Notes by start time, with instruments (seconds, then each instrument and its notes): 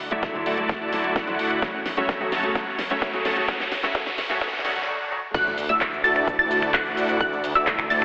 Already playing: riser
0.11 detuned saw bass D2, steel-string acoustic guitar D3 F#3 A3 E4, supersaw synth A3 E4 F#4 D5 E5, closed hi-hat
0.23 kick, snare, closed hi-hat
0.34 steel-string acoustic guitar D3 F#3 A3 E4
0.46 detuned saw bass D2, supersaw synth A3 E4 F#4 D5 A5, open hi-hat
0.57 steel-string acoustic guitar D3 F#3 A3 E4, closed hi-hat
0.69 kick, snare, closed hi-hat
0.81 detuned saw bass D2, supersaw synth A3 E4 F#4 D5 A5
0.92 steel-string acoustic guitar D3 F#3 A3 E4, open hi-hat
1.04 closed hi-hat
1.16 detuned saw bass D2, supersaw synth A3 E4 F#4 F#5, kick, snare, closed hi-hat
1.27 steel-string acoustic guitar D3 F#3 A3 E4, closed hi-hat
1.39 open hi-hat
1.51 closed hi-hat
1.62 detuned saw bass F#2, steel-string acoustic guitar C#3 F#3 A3 F#4, supersaw synth A3 C#4 F#4 C#5 F#5, kick, snare, closed hi-hat
1.86 snare, open hi-hat
1.97 detuned saw bass F#2, steel-string acoustic guitar C#3 F#3 A3 F#4, supersaw synth A3 C#4 F#4 C#5 E5, closed hi-hat
2.09 kick, snare, closed hi-hat
2.20 steel-string acoustic guitar C#3 F#3 A3 F#4
2.32 detuned saw bass F#2, supersaw synth A3 C#4 F#4 C#5 A5, snare, open hi-hat
2.43 steel-string acoustic guitar C#3 F#3 A3 F#4, closed hi-hat
2.55 detuned saw bass F#2, steel-string acoustic guitar C#3 F#3 A3 F#4, supersaw synth A3 C#4 F#4 C#5 F#5, kick, snare, closed hi-hat
2.79 snare, open hi-hat
2.90 detuned saw bass F#2, steel-string acoustic guitar C#3 F#3 A3 F#4, supersaw synth A3 C#4 F#4 C#5 E5, closed hi-hat
3.02 kick, snare, closed hi-hat
3.13 steel-string acoustic guitar C#3 F#3 A3 F#4, closed hi-hat
3.25 detuned saw bass F#2, supersaw synth A3 C#4 F#4 C#5 A5, snare, open hi-hat
3.36 steel-string acoustic guitar C#3 F#3 A3 F#4, closed hi-hat
3.48 detuned saw bass F#2, steel-string acoustic guitar C#3 F#3 A3 F#4, supersaw synth A3 C#4 F#4 C#5 F#5, kick, snare, closed hi-hat
3.60 snare, closed hi-hat
3.72 snare, open hi-hat
3.83 detuned saw bass F#2, steel-string acoustic guitar C#3 F#3 A3 F#4, supersaw synth A3 C#4 F#4 C#5 E5, snare, closed hi-hat
3.94 detuned saw bass F#2, steel-string acoustic guitar C#3 F#3 A3 F#4, supersaw synth A3 C#4 F#4 C#5 F#5, kick, snare, closed hi-hat
4.06 snare
4.18 snare, open hi-hat
4.29 detuned saw bass F#2, steel-string acoustic guitar C#3 F#3 A3 F#4, supersaw synth A3 C#4 F#4 C#5 E5, snare, closed hi-hat
4.41 detuned saw bass F#2, steel-string acoustic guitar C#3 F#3 A3 F#4, supersaw synth A3 C#4 F#4 F#5, kick, snare, closed hi-hat, swell
4.47 snare
4.53 snare
4.59 snare
4.64 detuned saw bass F#2, steel-string acoustic guitar C#3 F#3 A3 F#4, supersaw synth A3 C#4 F#4 C#5 F#5, snare, open hi-hat
4.70 snare
4.76 snare, closed hi-hat
4.82 snare
4.87 steel-string acoustic guitar C#3 F#3 A3 F#4
5.11 steel-string acoustic guitar C#3 F#3 A3 F#4
5.34 detuned saw bass D2, supersaw synth A3 E4 F#4 D5 F#5, synth pluck F#6, kick, closed hi-hat, crash, sub drop, shaker
5.47 shaker
5.58 open hi-hat, shaker
5.69 detuned saw bass D2, supersaw synth A3 E4 F#4 D5 E5, synth pluck E6, shaker
5.81 kick, clap, closed hi-hat, shaker
5.93 shaker
6.04 detuned saw bass D2, supersaw synth A3 E4 F#4 D5 A5, synth pluck A6, open hi-hat, shaker
6.16 finger snap, closed hi-hat, shaker
6.27 kick, closed hi-hat, shaker
6.39 detuned saw bass D2, supersaw synth A3 E4 F#4 D5 A5, synth pluck A6, shaker
6.51 open hi-hat, shaker
6.62 finger snap, closed hi-hat, shaker
6.74 detuned saw bass D2, supersaw synth F#4 F#5, synth pluck F#6, kick, clap, closed hi-hat, shaker
6.86 closed hi-hat, shaker
6.97 open hi-hat, shaker
7.09 closed hi-hat, shaker
7.21 detuned saw bass D2, synth pluck F#6, kick, closed hi-hat, shaker
7.33 shaker
7.44 open hi-hat, shaker
7.55 detuned saw bass D2, supersaw synth A3 E4 F#4 D5 E5, synth pluck E6, closed hi-hat, shaker
7.67 kick, clap, closed hi-hat, shaker
7.79 finger snap, shaker
7.90 detuned saw bass D2, supersaw synth A3 E4 F#4 D5 A5, synth pluck A6, open hi-hat, shaker